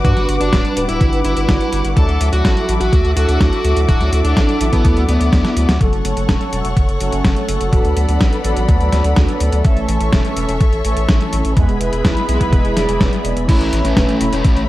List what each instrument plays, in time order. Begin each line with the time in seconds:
Already playing: string section B4 F#5 D6
0.05 analog synth bass G2, analog polysynth G3 D4 F#4 B4, lead electric guitar F#4, kick, closed hi-hat
0.17 analog synth bass G1, snare, closed hi-hat
0.29 analog synth bass G1, closed hi-hat
0.41 analog synth bass G1, lead electric guitar D4, closed hi-hat
0.53 analog synth bass D1, kick, snare, closed hi-hat
0.65 closed hi-hat
0.77 analog synth bass D1, analog polysynth G3 D4 F#4 B4, closed hi-hat
0.89 analog synth bass D1, lead electric guitar E4, closed hi-hat
1.01 analog synth bass G1, kick, closed hi-hat
1.13 analog synth bass G1, closed hi-hat
1.25 analog synth bass G1, lead electric guitar E4, closed hi-hat
1.37 analog synth bass G1, closed hi-hat
1.49 analog synth bass G1, kick, snare, closed hi-hat
1.61 closed hi-hat
1.73 analog synth bass G1, closed hi-hat
1.85 analog synth bass G1, closed hi-hat
1.97 analog synth bass D2, analog polysynth F#3 D4 E4 A4, lead electric guitar A4, string section A4 E5 D6, kick, closed hi-hat
2.09 analog synth bass D2, closed hi-hat
2.21 analog synth bass D2, closed hi-hat
2.33 analog synth bass D2, lead electric guitar F#4, closed hi-hat
2.45 analog synth bass A1, kick, snare, closed hi-hat
2.57 closed hi-hat
2.69 analog synth bass A1, analog polysynth F#3 D4 E4 A4, closed hi-hat
2.80 analog synth bass A1, lead electric guitar F#4, closed hi-hat
2.93 analog synth bass D2, kick, closed hi-hat
3.05 analog synth bass D2, closed hi-hat
3.16 analog synth bass D2, analog polysynth F#3 D4 E4 A4, lead electric guitar F#4, closed hi-hat
3.29 analog synth bass D2, closed hi-hat
3.41 analog synth bass D2, kick, snare, closed hi-hat
3.53 closed hi-hat
3.65 analog synth bass D2, closed hi-hat
3.77 analog synth bass D2, closed hi-hat
3.89 analog synth bass D1, analog polysynth F#3 D4 E4 A4, lead electric guitar F#4, kick, closed hi-hat
4.01 analog synth bass D2, snare, closed hi-hat
4.13 analog synth bass D2, closed hi-hat
4.24 analog synth bass D2, lead electric guitar D4, closed hi-hat
4.37 analog synth bass A1, kick, snare, closed hi-hat
4.49 closed hi-hat
4.61 analog synth bass A1, analog polysynth F#3 D4 E4 A4, closed hi-hat
4.73 analog synth bass A1, lead electric guitar B3, kick, closed hi-hat
4.85 analog synth bass D2, kick, closed hi-hat
4.97 analog synth bass D2, closed hi-hat
5.09 analog synth bass D2, analog polysynth F#3 D4 E4 D5, lead electric guitar B3, closed hi-hat
5.21 analog synth bass D2, closed hi-hat
5.33 analog synth bass D2, kick, snare, closed hi-hat
5.45 snare, closed hi-hat
5.57 analog synth bass D2, closed hi-hat
5.69 analog synth bass D2, snare, closed hi-hat
5.80 analog synth bass F#1, analog polysynth F#3 A3 C#4 A4, string section A4 C#5 F#5 C#6, kick, closed hi-hat
5.92 analog synth bass F#1, closed hi-hat
6.05 analog synth bass F#1, closed hi-hat
6.17 analog synth bass F#1, closed hi-hat
6.29 analog synth bass E1, kick, snare, closed hi-hat
6.41 closed hi-hat
6.53 analog synth bass E1, analog polysynth F#3 A3 C#4 A4, closed hi-hat
6.65 analog synth bass E1, closed hi-hat
6.77 analog synth bass F#1, kick, closed hi-hat
6.89 analog synth bass F#1, closed hi-hat
7.01 analog synth bass F#1, analog polysynth F#3 A3 C#4 A4, closed hi-hat
7.13 analog synth bass F#1, closed hi-hat
7.25 analog synth bass F#1, kick, snare, closed hi-hat
7.37 closed hi-hat
7.49 analog synth bass F#1, closed hi-hat
7.61 analog synth bass F#1, closed hi-hat
7.72 analog synth bass D1, analog polysynth F#3 B3 D4 A4, string section D5 B5, kick, closed hi-hat
7.85 analog synth bass D2, closed hi-hat
7.97 analog synth bass D2, closed hi-hat
8.09 analog synth bass D2, closed hi-hat
8.21 analog synth bass A1, kick, snare, closed hi-hat
8.33 closed hi-hat
8.44 analog synth bass A1, analog polysynth F#3 B3 D4 A4, closed hi-hat
8.57 analog synth bass A1, closed hi-hat
8.69 analog synth bass D2, kick, closed hi-hat
8.81 analog synth bass D2, closed hi-hat
8.93 analog synth bass D2, snare, closed hi-hat
9.04 analog synth bass D2, closed hi-hat
9.16 analog synth bass D2, kick, snare, closed hi-hat
9.29 closed hi-hat
9.40 analog synth bass D2, closed hi-hat
9.52 analog synth bass D2, closed hi-hat
9.64 analog synth bass A1, analog polysynth E3 A3 C#4 A4, string section A4 C#5 E5 C#6, kick, closed hi-hat
9.77 analog synth bass A1, closed hi-hat
9.88 analog synth bass A1, closed hi-hat
10.00 analog synth bass A1, closed hi-hat
10.13 analog synth bass E1, kick, snare, closed hi-hat
10.25 closed hi-hat
10.37 analog synth bass E1, analog polysynth E3 A3 C#4 A4, closed hi-hat
10.49 analog synth bass E1, closed hi-hat
10.61 analog synth bass A1, kick, closed hi-hat
10.73 analog synth bass A1, closed hi-hat
10.85 analog synth bass A1, analog polysynth E3 A3 C#4 A4, closed hi-hat
10.97 analog synth bass A1, closed hi-hat
11.09 analog synth bass A1, kick, snare, closed hi-hat
11.21 closed hi-hat
11.33 analog synth bass A1, closed hi-hat
11.45 analog synth bass A1, closed hi-hat
11.56 analog synth bass E2, analog polysynth G#3 B3 E4 B4, string section G#4 B4 E5 B5, kick, closed hi-hat
11.69 analog synth bass E1, closed hi-hat
11.81 analog synth bass E1, closed hi-hat
11.93 analog synth bass E1, closed hi-hat
12.05 analog synth bass B1, kick, snare, closed hi-hat
12.17 closed hi-hat
12.29 analog synth bass B1, analog polysynth G#3 B3 E4 B4, closed hi-hat
12.41 analog synth bass B1, kick, closed hi-hat
12.53 analog synth bass E1, kick, closed hi-hat
12.65 analog synth bass E1, closed hi-hat
12.77 analog synth bass E1, analog polysynth G#3 B3 E4 D5, snare, closed hi-hat
12.89 analog synth bass E1, closed hi-hat
13.01 analog synth bass E1, kick, snare, closed hi-hat
13.13 closed hi-hat
13.25 analog synth bass E1, closed hi-hat
13.37 analog synth bass E1, closed hi-hat
13.48 analog synth bass A1, string section A3 C#5 E5 B5, analog polysynth A3 C#4 E4 B4, lead electric guitar C#4 E4, kick, closed hi-hat, crash
13.61 analog synth bass A1, closed hi-hat
13.73 analog synth bass A1, closed hi-hat
13.84 analog synth bass A1, lead electric guitar A3 C#4, closed hi-hat
13.97 analog synth bass E1, kick, snare, closed hi-hat
14.09 closed hi-hat
14.21 analog synth bass E1, analog polysynth A3 C#4 E4 B4, closed hi-hat
14.33 analog synth bass E1, lead electric guitar A3 C#4, closed hi-hat
14.45 analog synth bass A1, kick, closed hi-hat
14.57 analog synth bass A1, closed hi-hat